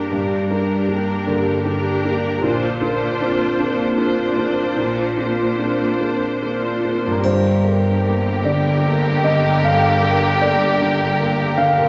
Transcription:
Already playing: grand piano A#3 D4 A#4, viola section D4 G4, harp D4 G4, violin section A#4
0.11 double bass section G1, harp G2, cello section G2, grand piano G2
0.50 harp A#3, viola section D4 G4, grand piano D4 A#4, violin section A#4
0.88 grand piano A#3 D4 A#4, harp G4
1.26 cello section G2, harp D3, grand piano A#3 D4 A#4
1.65 grand piano D4 A#4, viola section D4 G4, harp G4, violin section A#4
2.04 grand piano A#3 D4 A#4
2.41 double bass section A#1, harp A#2, cello section A#2, grand piano A#2, viola section D4 F4, violin section C5
2.81 viola section D4 F4, grand piano D4 A#4, violin section C5
3.19 grand piano C4 D4 A#4, harp F4
3.58 cello section A#2, grand piano C4 D4 A#4
3.97 grand piano D4 A#4, viola section D4 F4, harp F4, violin section C5
4.37 grand piano C4 D4 A#4
4.76 double bass section A#1, cello section A#2, harp A#2, grand piano A#2
5.17 harp C4, grand piano D4 A#4, viola section D4 F4, violin section C5
5.58 grand piano C4 D4 A#4, harp F4
6.00 cello section A#2, grand piano C4 D4 A#4
6.41 grand piano D4 A#4, viola section D4 F4, harp F4, violin section C5
6.84 grand piano C4 D4 A#4
7.06 harp G2
7.11 harp A#3
7.19 double bass section G1, harp G4, violin section A#4
7.24 cello section G2, grand piano G2 C5, viola section D3, violin section G4, triangle
7.65 grand piano A#4
8.05 grand piano A#3
8.45 grand piano D3 D5
8.84 grand piano A#3
9.24 grand piano D3 D#5
9.64 grand piano G2 F5
10.03 grand piano A#4
10.42 grand piano A#3 D5
10.82 grand piano D3
11.20 grand piano A#3
11.57 grand piano D3 F5
11.78 harp A#2
11.82 harp C4

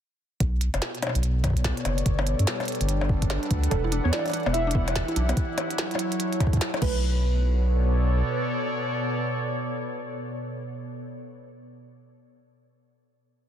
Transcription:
0.40 analog synth bass B1, ambient pad B2, kick, closed hi-hat
0.61 closed hi-hat
0.74 analog synth bass F#1, closed hi-hat, percussion blips
0.79 ambient pad B3 A4, snare, closed hi-hat
0.95 closed hi-hat
1.02 closed hi-hat, percussion blips
1.07 percussion blips
1.09 percussion blips
1.15 analog synth bass B1, ambient pad C#5 D5, closed hi-hat
1.23 closed hi-hat
1.44 kick, closed hi-hat, percussion blips
1.47 kick
1.50 kick
1.53 kick, closed hi-hat
1.64 kick, snare, closed hi-hat
1.77 closed hi-hat
1.85 analog synth bass F#1, closed hi-hat, percussion blips
1.98 closed hi-hat
2.06 analog synth bass G1, ambient pad G3, kick, closed hi-hat
2.19 percussion blips
2.27 closed hi-hat
2.39 analog synth bass G2, closed hi-hat
2.47 ambient pad D4, snare, closed hi-hat
2.60 closed hi-hat, percussion blips
2.65 closed hi-hat
2.68 closed hi-hat
2.72 closed hi-hat
2.75 closed hi-hat
2.81 analog synth bass G1, ambient pad B4 F#5, closed hi-hat
2.89 closed hi-hat
3.01 percussion blips
3.09 kick
3.22 kick, closed hi-hat
3.30 snare, closed hi-hat, percussion blips
3.43 closed hi-hat
3.51 analog synth bass D2, kick, closed hi-hat
3.64 closed hi-hat
3.70 analog synth bass E1, ambient pad E3, synth keys A4, kick, closed hi-hat, percussion blips
3.84 synth arpeggio sound E4
3.92 synth arpeggio sound D4, closed hi-hat
4.04 analog synth bass E2, synth arpeggio sound B3, ambient pad E4, synth keys C#5
4.11 synth arpeggio sound E4, synth keys D5, snare, closed hi-hat, percussion blips
4.19 percussion blips
4.26 closed hi-hat, percussion blips
4.28 closed hi-hat
4.30 closed hi-hat, percussion blips
4.32 closed hi-hat
4.34 synth arpeggio sound D4, closed hi-hat
4.43 analog synth bass E1, synth arpeggio sound B3, closed hi-hat, percussion blips
4.48 ambient pad G4 D5
4.53 synth arpeggio sound E4, synth keys E5, closed hi-hat
4.67 synth arpeggio sound D4, closed hi-hat
4.75 synth arpeggio sound B3, kick
4.88 closed hi-hat, percussion blips
4.96 kick, snare, closed hi-hat
5.08 synth arpeggio sound E4, closed hi-hat
5.16 analog synth bass B1, synth arpeggio sound D4, closed hi-hat
5.29 synth arpeggio sound B3, closed hi-hat, percussion blips
5.37 ambient pad F#3, kick, closed hi-hat
5.58 closed hi-hat, percussion blips
5.64 ambient pad C#5
5.71 closed hi-hat
5.78 snare, closed hi-hat
5.91 closed hi-hat, percussion blips
5.96 ambient pad A4, closed hi-hat
6.12 closed hi-hat
6.20 closed hi-hat
6.33 closed hi-hat
6.40 kick, closed hi-hat, percussion blips
6.47 kick
6.53 kick, closed hi-hat
6.57 kick, snare, closed hi-hat
6.74 closed hi-hat, percussion blips
6.82 analog synth bass B1, ambient pad B2, synth arpeggio sound A3, synth keys B4, kick, crash
6.89 ambient pad B3
7.17 ambient pad A4
7.22 ambient pad C#5
7.28 ambient pad D5

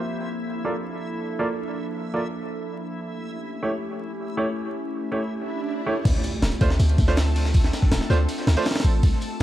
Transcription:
Already playing: ambient pad F3 A#3, synth texture E4 E5
0.08 ambient pad D4 A4
0.65 grand piano A#3 F4 A4 D5
1.39 grand piano A#3 F4 A4 D5
2.14 grand piano A#3 F4 A4 D5
3.06 ambient pad A3 C#4 E4 G4
3.63 grand piano A3 E4 G4 C#5
4.37 grand piano A3 E4 G4 C#5
5.12 grand piano A3 E4 G4 C#5
5.30 swell
5.86 grand piano A3 E4 G4 C#5
6.05 808-style bass D2, ambient pad A3 C4 D4 F4, synth texture A4 A5, kick, crash, ride, tambourine, impact
6.14 snare
6.23 ride, tambourine
6.42 808-style bass D1, snare, ride, tambourine
6.51 closed hi-hat, ride
6.61 808-style bass D2, grand piano A3 D4 F4 C5, kick, ride, tambourine
6.70 snare
6.79 808-style bass D2, ride, tambourine
6.89 ride
6.98 808-style bass D2, kick, ride, tambourine
7.07 grand piano A3 D4 F4 C5, snare
7.16 snare, ride, tambourine
7.35 open hi-hat, ride
7.45 snare
7.54 kick, ride, tambourine
7.64 snare
7.73 snare, ride, tambourine
7.82 kick, snare
7.91 808-style bass D1, snare, open hi-hat, tambourine
8.01 snare
8.10 808-style bass D2, grand piano A3 D4 F4 C5, snare, tambourine
8.28 ride, tambourine
8.38 snare, tambourine
8.47 808-style bass D2, snare, ride, tambourine
8.52 snare, tambourine
8.57 grand piano A3 D4 F4 C5, snare, ride, tambourine
8.61 snare, tambourine
8.65 snare, ride, tambourine
8.71 snare, ride
8.76 snare, ride
8.80 snare, ride
8.84 808-style bass A1, ride, tambourine
9.03 808-style bass C2, ambient pad A#3 C4 G4, kick, ride, tambourine
9.12 snare
9.21 ride, tambourine

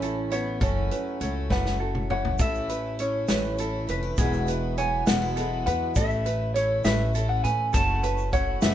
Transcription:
Already playing: upright bass A1, steel-string acoustic guitar E2 E3 C#4, twelve-string acoustic guitar A2 E3 A3 C#4 E4, clean electric guitar C#4
0.02 steel-string acoustic guitar E4, ukulele A4, closed hi-hat
0.30 twelve-string acoustic guitar A3 C#4 E4, clean electric guitar B3, ukulele C#5, closed hi-hat
0.60 upright bass F#1, steel-string acoustic guitar F#2, twelve-string acoustic guitar F#3 A3 C#4 E4, clean electric guitar C#4, ukulele A4, kick, closed hi-hat
0.91 steel-string acoustic guitar F#3, ukulele B4, closed hi-hat
1.20 upright bass C#2, twelve-string acoustic guitar F#3 A3 C#4 E4, ukulele C#5, closed hi-hat
1.50 upright bass F#1, steel-string acoustic guitar C#3, twelve-string acoustic guitar F#3 A3 C#4 E4, ukulele B4, clean electric guitar F#5, kick, snare
1.66 snare
1.80 steel-string acoustic guitar F#4, ukulele A4
1.95 mid tom
2.10 twelve-string acoustic guitar A3 C#4 E4, ukulele C#5, clean electric guitar F#5, mid tom
2.25 floor tom
2.39 upright bass A1, twelve-string acoustic guitar A2 E3 A3 C#4 E4, ukulele A4, clean electric guitar E5, kick, closed hi-hat, shaker
2.55 shaker
2.69 twelve-string acoustic guitar A3 C#4 E4, ukulele B4, closed hi-hat, shaker
2.99 twelve-string acoustic guitar E3 A3 C#4 E4, ukulele C#5, clean electric guitar C#5, closed hi-hat
3.28 upright bass A1, twelve-string acoustic guitar A2 E3 A3 C#4 E4, ukulele B4, snare, closed hi-hat, shaker
3.58 twelve-string acoustic guitar E3 A3 C#4 E4, ukulele A4, closed hi-hat, shaker
3.87 upright bass F1, twelve-string acoustic guitar A3 C#4 E4, ukulele B4, clean electric guitar B4, closed hi-hat
4.03 steel-string acoustic guitar E4
4.17 upright bass E1, twelve-string acoustic guitar E2 B2 F#3 G#3 B3 E4, steel-string acoustic guitar E3 G#4, ukulele G#4, kick, closed hi-hat, shaker
4.33 shaker
4.47 twelve-string acoustic guitar G#3 B3 E4, ukulele B4, closed hi-hat, shaker
4.51 twelve-string acoustic guitar F#3
4.77 twelve-string acoustic guitar F#3 G#3 B3 E4, ukulele C#5, clean electric guitar G#5, closed hi-hat
5.06 upright bass E1, twelve-string acoustic guitar E2 B2 F#3 G#3 B3 E4, steel-string acoustic guitar E3 C#4, ukulele B4, clean electric guitar F#5, snare, closed hi-hat, shaker
5.22 steel-string acoustic guitar E4
5.36 twelve-string acoustic guitar F#3 G#3 B3 E4, steel-string acoustic guitar G#4, ukulele A4, closed hi-hat, shaker
5.66 upright bass E2, twelve-string acoustic guitar F#3 G#3 B3 E4, ukulele B4, clean electric guitar F#5, closed hi-hat
5.95 upright bass A1, twelve-string acoustic guitar A2 E3 A3 C#4 E4, ukulele A4, clean electric guitar E5, kick, closed hi-hat, shaker
6.10 shaker
6.25 twelve-string acoustic guitar A3 C#4 E4, ukulele B4, closed hi-hat, shaker
6.54 twelve-string acoustic guitar E3 A3 C#4, clean electric guitar C#5, ukulele C#5, closed hi-hat
6.58 twelve-string acoustic guitar E4
6.84 upright bass A1, twelve-string acoustic guitar A2 E3 A3 C#4 E4, ukulele B4, clean electric guitar E5, snare, closed hi-hat, shaker
7.14 twelve-string acoustic guitar E3 A3 C#4 E4, ukulele A4, closed hi-hat, shaker
7.29 clean electric guitar F#5
7.44 upright bass A2, twelve-string acoustic guitar A3 C#4 E4, ukulele B4, clean electric guitar G#5, closed hi-hat
7.73 upright bass F#1, twelve-string acoustic guitar F#2 C#3 E3 A3 C#4 F#4, ukulele A4, clean electric guitar A5, kick, closed hi-hat, shaker
8.03 twelve-string acoustic guitar E3 A3 C#4 F#4, ukulele B4, closed hi-hat, shaker
8.18 shaker
8.33 twelve-string acoustic guitar E3 A3 C#4 F#4, ukulele C#5, clean electric guitar F#5, kick, closed hi-hat, shaker
8.62 upright bass F#1, twelve-string acoustic guitar F#2 C#3 E3 A3 C#4 F#4, ukulele B4, clean electric guitar E5, snare, closed hi-hat, shaker

